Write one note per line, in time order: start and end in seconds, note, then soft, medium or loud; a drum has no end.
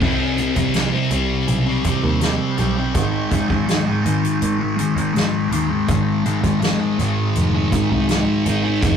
0.01 0.53 C2 medium
0.01 0.36 C3 medium
0.01 0.38 G3 medium
0.01 0.40 C4 medium
0.01 kick loud
0.01 crash medium
0.37 0.73 C3 medium
0.37 0.57 G3 medium
0.37 0.55 C4 medium
0.37 closed hi-hat medium
0.55 0.90 C2 medium
0.55 0.75 G3 medium
0.55 0.76 C4 medium
0.55 kick medium
0.55 closed hi-hat medium
0.74 1.10 C3 medium
0.74 0.94 G3 medium
0.74 0.92 C4 medium
0.74 snare loud
0.74 closed hi-hat medium
0.93 1.11 G3 soft
0.93 1.13 C4 medium
1.11 1.45 C2 medium
1.11 1.84 C3 medium
1.11 1.67 G3 medium
1.11 1.66 C4 medium
1.11 closed hi-hat medium
1.48 1.82 B1 medium
1.48 closed hi-hat medium
1.66 1.85 G3 medium
1.66 1.87 C4 medium
1.84 2.20 C3 medium
1.84 2.05 G3 medium
1.84 2.03 C4 medium
1.84 kick medium
1.84 closed hi-hat medium
2.03 2.37 D#2 medium
2.03 2.21 G3 medium
2.03 2.23 C4 medium
2.21 2.56 C3 medium
2.21 2.57 G3 medium
2.21 2.59 C4 medium
2.21 snare medium
2.21 closed hi-hat medium
2.57 2.93 B1 medium
2.57 2.93 C3 medium
2.57 2.78 G3 medium
2.57 2.76 C4 medium
2.57 closed hi-hat medium
2.77 2.94 G3 medium
2.77 6.27 C4 medium
2.94 3.50 G#1 medium
2.94 3.31 G#2 medium
2.94 3.31 D#3 medium
2.94 3.33 G#3 loud
2.94 kick medium
2.94 closed hi-hat medium
3.31 3.67 G#2 medium
3.31 3.50 D#3 medium
3.31 3.48 G#3 medium
3.31 kick medium
3.31 closed hi-hat medium
3.49 4.01 C2 medium
3.49 3.67 D#3 medium
3.49 3.69 G#3 medium
3.49 kick medium
3.67 4.04 G#2 medium
3.67 3.87 D#3 medium
3.67 3.86 G#3 loud
3.67 snare loud
3.67 closed hi-hat medium
3.86 4.05 D#3 soft
3.86 4.07 G#3 medium
4.04 4.23 G#1 medium
4.04 4.77 G#2 medium
4.04 4.60 D#3 medium
4.04 4.59 G#3 medium
4.04 closed hi-hat medium
4.25 closed hi-hat medium
4.42 4.76 G#1 medium
4.42 closed hi-hat medium
4.59 4.78 D#3 medium
4.59 4.80 G#3 medium
4.77 5.13 G#2 medium
4.77 4.97 D#3 medium
4.77 4.96 G#3 medium
4.77 closed hi-hat medium
4.96 5.52 G#1 medium
4.96 5.14 D#3 medium
4.96 5.16 G#3 medium
4.96 closed hi-hat medium
5.14 5.49 G#2 medium
5.14 5.50 D#3 medium
5.14 5.52 G#3 medium
5.14 snare loud
5.14 closed hi-hat medium
5.50 5.86 D#2 medium
5.50 5.87 G#2 medium
5.50 5.70 D#3 medium
5.50 5.69 G#3 medium
5.50 closed hi-hat medium
5.69 5.87 D#3 medium
5.69 5.89 G#3 medium
5.87 6.40 G#1 loud
5.87 6.23 G#2 medium
5.87 6.24 D#3 medium
5.87 6.25 G#3 medium
5.87 kick loud
5.87 closed hi-hat medium
6.23 6.60 G#2 medium
6.23 6.42 D#3 medium
6.23 6.41 G#3 medium
6.23 closed hi-hat medium
6.42 6.78 G#1 medium
6.42 6.60 D#3 medium
6.42 6.63 G#3 medium
6.42 kick medium
6.42 closed hi-hat medium
6.61 6.98 G#2 medium
6.61 6.80 D#3 medium
6.61 6.78 G#3 medium
6.61 snare loud
6.61 closed hi-hat medium
6.79 6.99 D#3 soft
6.79 7.00 G#3 medium
6.99 7.33 G#1 medium
6.99 7.70 G#2 medium
6.99 7.55 D#3 medium
6.99 7.53 G#3 medium
6.99 closed hi-hat medium
7.35 7.70 F1 medium
7.35 closed hi-hat medium
7.54 7.71 D#3 medium
7.54 7.72 G#3 medium
7.71 8.07 G#2 medium
7.71 7.91 D#3 medium
7.71 7.89 G#3 medium
7.71 kick medium
7.71 closed hi-hat medium
7.90 8.25 C2 medium
7.90 8.09 D#3 medium
7.90 8.09 G#3 medium
8.08 8.44 G#2 medium
8.08 8.45 D#3 medium
8.08 8.47 G#3 loud
8.08 snare medium
8.08 closed hi-hat medium
8.45 8.80 G#1 medium
8.45 8.80 G#2 medium
8.45 8.64 D#3 medium
8.45 8.62 G#3 medium
8.45 closed hi-hat medium
8.63 8.81 D#3 medium
8.63 8.82 G#3 medium
8.81 8.97 F1 medium
8.81 8.97 G#2 medium
8.81 8.97 D#3 loud
8.81 8.97 G#3 loud
8.81 kick loud
8.81 closed hi-hat medium